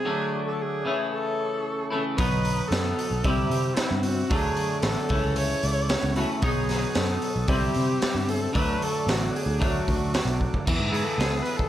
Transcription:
0.00 0.43 G#4 loud
0.05 0.84 D3 medium
0.05 0.84 F#3 medium
0.05 0.85 A3 medium
0.05 0.84 A3 loud
0.05 0.85 D4 medium
0.05 0.85 D5 medium
0.05 0.85 F#5 medium
0.05 0.85 D6 medium
0.48 0.63 A4 medium
0.61 1.12 G#4 medium
0.85 1.90 C#3 medium
0.85 1.90 E3 medium
0.85 1.91 A3 medium
0.85 2.18 C#4 medium
0.85 1.89 E4 medium
0.85 2.19 A4 medium
0.85 2.18 C#5 medium
0.85 2.18 E5 medium
0.85 2.18 C#6 medium
1.13 1.88 A4 medium
1.90 2.17 C#3 medium
1.90 2.17 E3 medium
1.90 2.17 A3 medium
1.90 2.16 E4 medium
1.90 2.04 A4 medium
2.17 2.60 B1 medium
2.17 3.22 B2 medium
2.17 3.23 F#3 medium
2.17 3.23 B3 medium
2.17 3.24 D#4 medium
2.17 3.23 B4 medium
2.17 2.70 B4 loud
2.17 3.24 D#5 medium
2.17 3.24 F#5 medium
2.17 3.23 D#6 medium
2.17 kick loud
2.17 open hi-hat medium
2.45 open hi-hat medium
2.68 2.92 F#2 loud
2.68 3.27 A4 medium
2.68 open hi-hat medium
2.72 snare loud
2.99 open hi-hat medium
3.11 3.22 B1 medium
3.23 3.46 C2 medium
3.23 4.29 C3 medium
3.23 4.29 G3 medium
3.23 4.30 C4 medium
3.23 4.30 E4 medium
3.23 3.77 G4 loud
3.23 4.29 C5 medium
3.23 4.29 E5 medium
3.23 4.29 G5 medium
3.23 4.29 E6 medium
3.23 kick loud
3.23 open hi-hat medium
3.50 3.71 C3 medium
3.50 open hi-hat medium
3.75 4.03 E4 medium
3.75 snare loud
3.75 open hi-hat medium
3.91 4.22 G2 medium
4.03 4.34 F#4 medium
4.03 open hi-hat medium
4.30 4.51 D2 medium
4.30 5.08 D3 medium
4.30 5.09 F#3 medium
4.30 6.41 A3 medium
4.30 5.09 A3 loud
4.30 5.09 D4 loud
4.30 4.82 G#4 loud
4.30 5.10 D5 medium
4.30 5.09 F#5 medium
4.30 5.10 D6 medium
4.30 kick loud
4.30 open hi-hat medium
4.57 open hi-hat medium
4.82 4.94 A1 loud
4.82 5.38 A4 medium
4.82 snare loud
4.82 open hi-hat medium
5.09 5.52 C#2 medium
5.09 6.14 C#3 medium
5.09 6.14 E3 medium
5.09 6.15 A3 medium
5.09 6.15 E4 loud
5.09 6.42 C#5 medium
5.09 6.42 E5 medium
5.09 6.42 C#6 medium
5.09 kick loud
5.09 open hi-hat medium
5.36 6.16 C#5 loud
5.36 open hi-hat medium
5.63 5.95 C#2 medium
5.63 open hi-hat medium
5.89 snare loud
5.89 open hi-hat medium
6.03 6.24 C#2 medium
6.16 6.41 C#3 medium
6.16 6.42 E3 medium
6.16 6.41 A3 medium
6.16 6.41 E4 medium
6.16 6.28 F#4 medium
6.16 open hi-hat medium
6.40 6.84 B1 loud
6.40 7.47 B2 medium
6.40 7.47 F#3 medium
6.40 7.48 B3 medium
6.40 7.47 D#4 loud
6.40 6.98 G#4 medium
6.40 7.46 B4 medium
6.40 7.47 D#5 medium
6.40 7.47 F#5 medium
6.40 7.47 D#6 medium
6.40 kick loud
6.40 open hi-hat medium
6.69 snare soft
6.69 open hi-hat medium
6.95 7.17 F#2 loud
6.95 7.49 A4 medium
6.95 snare loud
6.95 open hi-hat medium
7.22 open hi-hat medium
7.36 7.46 B1 medium
7.47 7.69 C2 loud
7.47 8.53 C3 medium
7.47 8.53 G3 medium
7.47 8.54 C4 loud
7.47 8.54 E4 medium
7.47 8.31 G4 medium
7.47 8.53 C5 medium
7.47 8.54 E5 medium
7.47 8.54 G5 medium
7.47 8.53 E6 medium
7.47 kick loud
7.47 open hi-hat medium
7.74 7.97 C3 medium
7.74 open hi-hat medium
8.02 snare loud
8.02 open hi-hat medium
8.15 8.46 G2 medium
8.29 8.55 A4 medium
8.29 open hi-hat medium
8.53 8.76 D2 medium
8.53 9.58 D3 medium
8.53 9.59 F#3 medium
8.53 9.59 A3 medium
8.53 9.59 D4 medium
8.53 10.65 A4 medium
8.53 8.85 B4 loud
8.53 10.65 D5 medium
8.53 10.66 F#5 medium
8.53 10.64 D6 medium
8.53 kick loud
8.53 open hi-hat medium
8.82 9.11 A4 medium
8.82 open hi-hat medium
9.07 9.28 A1 loud
9.07 9.38 F#4 medium
9.07 snare loud
9.07 open hi-hat medium
9.36 9.67 G#4 medium
9.36 open hi-hat medium
9.46 9.78 D2 medium
9.59 10.64 D3 medium
9.59 10.65 F#3 medium
9.59 10.65 A3 medium
9.59 10.66 D4 medium
9.59 kick loud
9.59 open hi-hat medium
9.65 10.43 F#4 medium
9.88 10.19 D2 medium
9.88 kick medium
9.88 open hi-hat medium
10.14 snare loud
10.14 open hi-hat medium
10.25 10.47 B1 medium
10.41 kick medium
10.54 kick medium
10.66 10.78 E2 medium
10.66 11.69 E3 medium
10.66 11.69 B4 medium
10.66 11.69 F#5 medium
10.66 11.69 G#5 medium
10.66 11.69 E6 medium
10.66 kick loud
10.66 crash loud
10.80 10.90 G#2 medium
10.92 11.03 G#2 medium
10.92 11.46 B3 medium
10.92 11.06 G#4 medium
10.92 open hi-hat medium
11.04 11.44 A4 loud
11.18 11.40 C#2 medium
11.18 11.69 G#4 medium
11.18 snare loud
11.18 open hi-hat medium
11.42 11.58 B4 medium
11.42 open hi-hat medium
11.47 11.69 B3 medium
11.57 11.69 A4 medium
11.57 kick medium

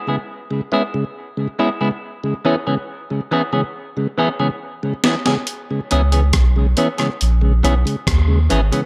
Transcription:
0.07 0.18 C#3 medium
0.07 0.18 G#3 medium
0.07 0.15 G#3 medium
0.07 0.15 B3 medium
0.07 0.15 E4 medium
0.07 0.15 G#4 medium
0.51 0.61 C#3 medium
0.51 0.61 G#3 medium
0.72 0.81 G#3 medium
0.72 0.83 B3 medium
0.72 0.82 B3 medium
0.72 0.83 C#4 medium
0.72 0.83 E4 medium
0.72 0.82 E4 medium
0.72 0.82 G#4 medium
0.94 1.05 C#3 medium
0.94 1.05 G#3 medium
1.37 1.48 C#3 medium
1.37 1.48 G#3 medium
1.59 1.68 G#3 medium
1.59 1.69 B3 medium
1.59 1.68 B3 medium
1.59 1.70 C#4 medium
1.59 1.70 E4 medium
1.59 1.68 E4 loud
1.59 1.68 G#4 loud
1.81 1.91 C#3 medium
1.81 1.91 G#3 medium
1.81 1.88 G#3 medium
1.81 1.88 B3 medium
1.81 1.88 E4 medium
1.81 1.88 G#4 medium
2.24 2.34 C#3 medium
2.24 2.34 G#3 medium
2.45 2.54 E3 medium
2.45 2.56 B3 medium
2.45 2.54 B3 loud
2.45 2.56 C#4 medium
2.45 2.55 C#4 medium
2.45 2.56 E4 medium
2.45 2.55 G#4 medium
2.67 2.77 C#3 medium
2.67 2.74 E3 medium
2.67 2.78 G#3 medium
2.67 2.74 B3 medium
2.67 2.74 C#4 medium
2.67 2.74 G#4 medium
3.10 3.21 C#3 medium
3.10 3.21 G#3 medium
3.31 3.41 E3 medium
3.31 3.42 B3 medium
3.31 3.41 B3 medium
3.31 3.42 C#4 medium
3.31 3.41 C#4 medium
3.31 3.43 E4 medium
3.31 3.41 G#4 loud
3.53 3.64 C#3 medium
3.53 3.61 E3 medium
3.53 3.64 G#3 medium
3.53 3.60 B3 medium
3.53 3.60 C#4 medium
3.53 3.60 G#4 medium
3.97 4.07 C#3 medium
3.97 4.07 G#3 medium
4.18 4.27 E3 medium
4.18 4.29 B3 medium
4.18 4.27 B3 medium
4.18 4.29 C#4 medium
4.18 4.28 C#4 medium
4.18 4.29 E4 medium
4.18 4.28 G#4 medium
4.39 4.50 C#3 medium
4.39 4.47 E3 medium
4.39 4.50 G#3 medium
4.39 4.47 B3 medium
4.39 4.47 C#4 medium
4.39 4.47 G#4 medium
4.83 4.94 C#3 medium
4.83 4.94 G#3 medium
5.04 5.14 E3 medium
5.04 5.15 B3 medium
5.04 5.14 B3 medium
5.04 5.14 C#4 medium
5.04 5.16 C#4 medium
5.04 5.16 E4 medium
5.04 5.14 G#4 medium
5.04 snare loud
5.26 5.37 C#3 medium
5.26 5.34 E3 medium
5.26 5.37 G#3 medium
5.26 5.34 B3 medium
5.26 5.34 C#4 medium
5.26 5.33 G#4 medium
5.26 snare medium
5.47 closed hi-hat medium
5.71 5.81 C#3 medium
5.71 5.81 G#3 medium
5.91 6.33 C#2 loud
5.91 6.00 E3 medium
5.91 6.00 B3 medium
5.91 6.02 B3 medium
5.91 6.00 C#4 loud
5.91 6.02 C#4 medium
5.91 6.02 E4 medium
5.91 6.01 G#4 medium
5.91 closed hi-hat medium
6.12 6.23 C#3 medium
6.12 6.20 E3 medium
6.12 6.23 G#3 medium
6.12 6.20 B3 medium
6.12 6.20 C#4 medium
6.12 6.20 G#4 medium
6.12 closed hi-hat medium
6.33 6.75 B1 medium
6.33 kick loud
6.33 cross-stick loud
6.33 closed hi-hat medium
6.56 6.67 C#3 medium
6.56 6.67 G#3 medium
6.77 6.87 E3 medium
6.77 6.88 B3 medium
6.77 6.87 B3 medium
6.77 6.88 C#4 medium
6.77 6.87 C#4 medium
6.77 6.88 E4 medium
6.77 6.87 G#4 medium
6.77 closed hi-hat medium
6.98 7.10 C#3 medium
6.98 7.07 E3 medium
6.98 7.10 G#3 medium
6.98 7.06 B3 medium
6.98 7.06 C#4 medium
6.98 7.06 G#4 medium
6.98 cross-stick medium
6.98 closed hi-hat soft
7.21 7.62 A#1 loud
7.21 closed hi-hat medium
7.41 7.53 C#3 medium
7.41 7.53 G#3 medium
7.63 7.85 B1 medium
7.63 7.73 E3 medium
7.63 7.74 B3 medium
7.63 7.73 B3 medium
7.63 7.75 C#4 medium
7.63 7.73 C#4 medium
7.63 7.75 E4 medium
7.63 7.74 G#4 medium
7.63 closed hi-hat medium
7.85 7.96 C#3 medium
7.85 7.96 G#3 medium
7.85 closed hi-hat medium
8.07 8.48 D#2 loud
8.07 kick loud
8.07 cross-stick loud
8.07 closed hi-hat loud
8.28 8.39 C#3 medium
8.28 8.39 G#3 medium
8.50 8.72 G#1 medium
8.50 8.60 E3 medium
8.50 8.61 B3 medium
8.50 8.60 B3 medium
8.50 8.61 C#4 medium
8.50 8.60 C#4 loud
8.50 8.61 E4 medium
8.50 8.60 G#4 medium
8.50 closed hi-hat medium
8.72 8.83 C#3 medium
8.72 8.80 E3 medium
8.72 8.83 G#3 medium
8.72 8.80 B3 medium
8.72 8.79 C#4 medium
8.72 8.79 G#4 medium
8.72 closed hi-hat medium

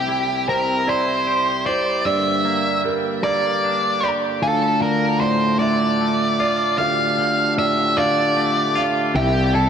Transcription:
0.00 2.03 C2 soft
0.00 1.66 C3 soft
0.00 2.03 C3 soft
0.00 2.03 E4 soft
0.00 0.49 G4 medium
0.00 4.38 G4 medium
0.00 0.48 E5 medium
0.08 0.86 E4 soft
0.48 2.06 C4 soft
0.48 0.89 A#4 medium
0.48 0.88 C5 soft
0.87 2.06 E4 soft
0.87 1.66 C5 medium
0.87 1.66 D5 medium
1.27 2.06 G4 soft
1.66 2.06 C5 soft
1.66 2.06 C5 medium
1.66 2.07 D5 medium
2.05 4.03 G2 medium
2.05 4.40 G2 soft
2.05 4.40 D3 soft
2.05 4.40 A#3 soft
2.05 2.85 D5 medium
2.05 2.80 E5 medium
2.45 3.24 A#3 soft
2.84 4.42 G3 medium
2.84 3.24 A#4 soft
3.24 4.43 A#3 soft
3.24 4.09 D5 medium
3.24 4.01 D5 medium
3.64 4.43 D4 soft
4.03 4.43 G4 soft
4.03 4.42 D5 medium
4.42 6.39 D2 soft
4.42 9.11 D3 medium
4.42 9.11 D4 soft
4.42 9.11 F4 soft
4.42 4.81 A4 medium
4.42 5.21 F5 medium
4.42 6.77 A5 medium
4.82 5.60 D3 medium
4.82 5.22 A#4 medium
5.20 7.18 A2 soft
5.20 5.59 C5 medium
5.20 5.60 D5 soft
5.59 7.17 D3 medium
5.59 6.82 D5 medium
5.59 6.39 E5 medium
6.01 7.97 A3 soft
6.40 8.36 F4 soft
6.40 6.79 D5 medium
6.78 8.76 D2 medium
6.78 9.69 G4 medium
6.78 7.53 F5 medium
6.78 7.58 F5 medium
7.19 7.96 D3 soft
7.58 9.15 A2 soft
7.58 7.97 D5 medium
7.58 7.98 E5 medium
7.97 9.15 D3 medium
7.97 8.81 D5 medium
7.97 8.75 F5 medium
8.36 9.15 A3 soft
8.75 9.15 F4 medium
8.75 9.15 F5 medium
9.13 9.69 C2 medium
9.13 9.69 C3 medium
9.13 9.69 C4 soft
9.13 9.69 E4 medium
9.13 9.55 G4 medium
9.13 9.69 E5 medium
9.54 9.69 E4 medium
9.54 9.69 A4 medium

